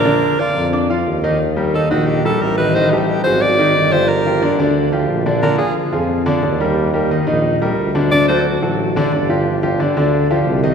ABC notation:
X:1
M:4/4
L:1/8
Q:1/4=179
K:Eblyd
V:1 name="Alto saxophone"
B2 d2 z4 | z2 A _G =G A B _c | c E G c d3 c | B3 z4 z |
B _A z6 | z8 | d c z6 | z8 |]
V:2 name="Grand piano"
[D,Dd]2 [F,Ff]2 [Ddd'] [F,Ff]2 [E,Ee] | z [G,GB] [E,Ee] [E,Ee]2 [G,GB]2 [E,Ee] | [E,Ee] [G,GA]2 [_G,_G_A]2 [E,Ee] [E,Ee] [F,F=G]- | [F,FG] [F,FG] [D,Dd] [D,Dd]2 [F,FG]2 [D,Dd] |
[D,Dd] [F,F_A]2 [F,FA]2 [D,Dd] [D,Dd] [G,GB]- | [G,GB] [G,GB] [E,Ee] [E,Ee]2 [G,GB]2 [D,Dd] | [D,Dd] [^F,^FA]2 [F,FA]2 [D,Dd] [D,Dd] [=F,=FG]- | [F,FG] [F,FG] [D,Dd] [D,Dd]2 [F,FG]2 [E,Ee] |]
V:3 name="Tuba" clef=bass
B,,, z2 F,,3 E,,2- | E,,3 B,,,3 A,,,2- | A,,,3 _A,,,3 G,,,2- | G,,,3 D,,3 B,,,2- |
B,,, z2 F,,3 E,,2- | E,,3 B,,,3 D,,2- | D,,3 A,,,3 G,,,2- | G,,,3 D,,3 C,,2 |]